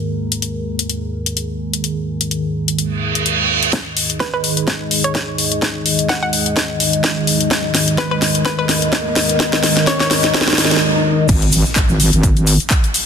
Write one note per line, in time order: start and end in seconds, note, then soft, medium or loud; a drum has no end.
0.00 3.69 D#3 medium
0.00 3.69 G#3 medium
0.00 3.69 G#4 medium
0.00 3.72 A#4 medium
0.32 closed hi-hat medium
0.42 closed hi-hat medium
0.79 closed hi-hat medium
0.90 closed hi-hat soft
1.26 closed hi-hat medium
1.37 closed hi-hat medium
1.74 closed hi-hat medium
1.84 closed hi-hat medium
2.21 closed hi-hat medium
2.31 closed hi-hat soft
2.68 closed hi-hat medium
2.79 closed hi-hat soft
2.79 reverse cymbal medium
3.15 closed hi-hat medium
3.26 closed hi-hat medium
3.63 closed hi-hat medium
3.73 11.25 D#3 medium
3.73 11.25 G#3 medium
3.73 7.47 G#4 medium
3.73 11.25 D#5 medium
3.73 kick loud
3.73 snare soft
3.73 closed hi-hat soft
3.73 riser medium
3.97 open hi-hat loud
4.10 closed hi-hat medium
4.20 4.29 B4 medium
4.20 kick loud
4.20 snare soft
4.20 closed hi-hat medium
4.34 4.40 B4 medium
4.44 open hi-hat medium
4.57 closed hi-hat medium
4.68 kick loud
4.68 snare soft
4.68 closed hi-hat medium
4.91 open hi-hat loud
5.04 5.24 C#5 medium
5.04 closed hi-hat medium
5.15 kick loud
5.15 snare medium
5.15 closed hi-hat medium
5.38 open hi-hat medium
5.52 closed hi-hat medium
5.62 kick loud
5.62 snare medium
5.62 closed hi-hat medium
5.86 open hi-hat loud
5.99 closed hi-hat medium
6.09 6.18 F#5 medium
6.09 kick loud
6.09 snare medium
6.09 closed hi-hat medium
6.23 6.29 F#5 medium
6.33 open hi-hat medium
6.46 closed hi-hat medium
6.56 kick loud
6.56 snare medium
6.56 closed hi-hat medium
6.80 open hi-hat loud
6.93 closed hi-hat medium
7.04 kick loud
7.04 snare medium
7.04 closed hi-hat soft
7.27 open hi-hat medium
7.41 closed hi-hat medium
7.51 11.25 A#4 medium
7.51 kick loud
7.51 snare medium
7.51 closed hi-hat medium
7.75 snare medium
7.75 open hi-hat loud
7.88 closed hi-hat medium
7.98 8.07 B4 medium
7.98 kick loud
7.98 snare medium
7.98 closed hi-hat medium
8.11 8.18 B4 medium
8.22 snare medium
8.22 open hi-hat medium
8.35 closed hi-hat medium
8.45 8.54 B4 medium
8.45 kick loud
8.45 snare medium
8.45 closed hi-hat medium
8.59 8.65 B4 medium
8.69 snare medium
8.69 open hi-hat loud
8.82 closed hi-hat medium
8.93 kick loud
8.93 snare medium
8.93 closed hi-hat medium
9.16 snare medium
9.16 open hi-hat medium
9.29 closed hi-hat medium
9.40 kick loud
9.40 snare medium
9.40 closed hi-hat medium
9.53 snare medium
9.63 snare medium
9.63 open hi-hat loud
9.77 snare medium
9.77 closed hi-hat medium
9.87 9.96 C#5 medium
9.87 kick loud
9.87 snare loud
9.87 closed hi-hat soft
10.00 10.07 C#5 medium
10.00 snare medium
10.11 snare loud
10.11 open hi-hat loud
10.24 snare medium
10.24 closed hi-hat medium
10.34 kick loud
10.34 snare loud
10.34 closed hi-hat soft
10.41 snare medium
10.48 snare medium
10.53 snare medium
10.58 snare loud
10.58 open hi-hat loud
10.65 snare loud
10.71 snare medium
10.71 closed hi-hat medium
10.76 snare medium
11.28 11.64 G#1 loud
11.28 13.06 D#3 medium
11.28 13.06 G#3 medium
11.28 13.06 G#4 medium
11.28 13.06 D#5 medium
11.28 kick loud
11.28 closed hi-hat medium
11.28 crash loud
11.28 impact medium
11.28 cabasa soft
11.42 closed hi-hat medium
11.42 cabasa soft
11.52 open hi-hat loud
11.52 cabasa medium
11.65 cabasa soft
11.76 kick loud
11.76 clap loud
11.76 closed hi-hat medium
11.76 cabasa medium
11.89 12.11 G#1 loud
11.89 cabasa soft
12.00 open hi-hat loud
12.00 cabasa medium
12.13 12.58 G#1 loud
12.13 closed hi-hat medium
12.13 cabasa soft
12.23 kick loud
12.23 closed hi-hat medium
12.23 cabasa medium
12.37 closed hi-hat soft
12.37 cabasa soft
12.47 open hi-hat loud
12.47 cabasa medium
12.60 closed hi-hat soft
12.60 cabasa soft
12.70 kick loud
12.70 clap loud
12.70 closed hi-hat medium
12.70 cabasa medium
12.84 closed hi-hat soft
12.84 cabasa soft
12.94 open hi-hat loud
12.94 cabasa loud